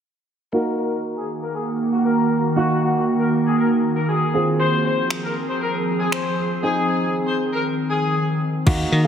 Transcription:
0.53 D#3 A#3 D#4 F#4 A#4
0.78 A#4
1.17 G#4
1.42 A#4
1.55 G#4
1.93 F#4
2.06 A#4
2.56 A#3 D#4 F#4
2.82 F#4
3.20 A#4
3.46 G#4
3.58 A#4
3.96 A#4
4.09 G#4
4.34 F3 C4 F4 G#4
4.60 C5
4.85 C5
5.11 finger snap
5.23 A#4
5.49 C5
5.61 A#4
6.00 G#4
6.12 C5, finger snap
6.63 D#3 C4 D#4 G#4
6.88 G#4
7.27 C5
7.52 A#4
7.90 G#4
8.66 D#2 A#3 D#4 F#4, kick, crash
8.92 D#3

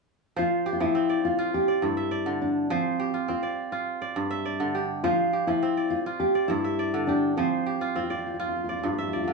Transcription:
0.36 F3 F4 C5
0.66 G4
0.73 F4
0.80 F3 E4
0.95 C4
1.09 D5
1.25 F4
1.39 F4
1.54 G4
1.68 D5
1.82 G2 E4
1.97 E5
2.11 D5
2.26 D3
2.42 D4
2.70 F3 C4 C5
3.00 G4
3.14 F4
3.28 C4 F4
3.43 D5
3.72 F4
4.02 D5
4.16 G2
4.30 E5
4.45 D5
4.60 D3
4.75 G4
5.04 F3 F4 C5
5.33 G4
5.47 F3 E4
5.63 C4
5.77 D5
5.90 F4
6.06 F4
6.20 G4
6.35 D5
6.48 G2 E4
6.64 E5
6.79 D5
6.94 D3
7.07 D4 G4
7.37 F3 C4 C5
7.66 G4
7.81 F4
7.96 C4 F4
8.03 F4
8.10 F4 D5
8.19 F4
8.27 F4
8.34 F4
8.39 F4
8.48 F4
8.56 F4
8.64 F4
8.69 F4 D5
8.79 F4
8.83 G2 F4
8.93 F4
8.98 F4 E5
9.08 F4
9.13 F4 D5
9.24 D3 F4

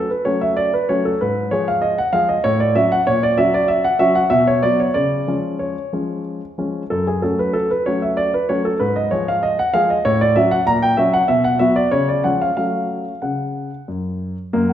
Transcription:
0.10 B4
0.25 F#3 A3 C#4 C#5
0.41 E5
0.57 D5
0.74 B4
0.89 F#3 A3 C#4 C#5
1.05 A4
1.21 G#2 B4
1.51 F3 G#3 G#4 C#5
1.68 F5
1.82 D#5
1.98 F#5
2.13 F3 G#3 G#4 F5
2.29 D#5
2.44 A2 C#5
2.60 D5
2.75 F#3 C#4 F#4 E5
2.92 F#5
3.07 A#2 C#5
3.23 D5
3.38 F#3 C#4 F#4 E5
3.54 D5
3.68 E5
3.84 F#5
3.99 F#3 C#4 F#4 E5
4.15 F#5
4.30 B2 E5
4.47 C#5
4.63 F#3 B3 F#4 D5
4.80 C#5
4.94 C#3 D5
5.27 F3 G#3 C#4
5.59 C#5
5.93 F3 G#3 C#4
6.58 F3 G#3 C#4
6.90 F#2 A4
7.07 G#4
7.22 F#3 A3 C#4 A4
7.39 B4
7.53 A4
7.71 B4
7.86 F#3 A3 C#4 C#5
8.02 E5
8.17 D5
8.34 B4
8.49 F#3 A3 C#4 C#5
8.65 A4
8.80 G#2 B4
8.96 D#5
9.11 F3 G#3 G#4 C#5
9.28 F5
9.43 D#5
9.59 F#5
9.74 F3 G#3 G#4 F5
9.90 D#5
10.05 A2 C#5
10.21 D5
10.36 F#3 C#4 F#4 E5
10.51 F#5
10.67 A#2 A#5
10.82 G5
10.97 F#3 C#4 F#4 E5
11.14 F#5
11.28 B2 E5
11.44 F#5
11.59 F#3 B3 F#4 E5
11.76 D5
11.91 C#3 C#5
12.09 D5
12.24 F3 G#3 C#4 F#5
12.42 F5
12.57 F#3 A3 C#4 F5
13.22 C#3 F#5
13.88 F#2
14.53 F#2 A#3
14.69 F#5

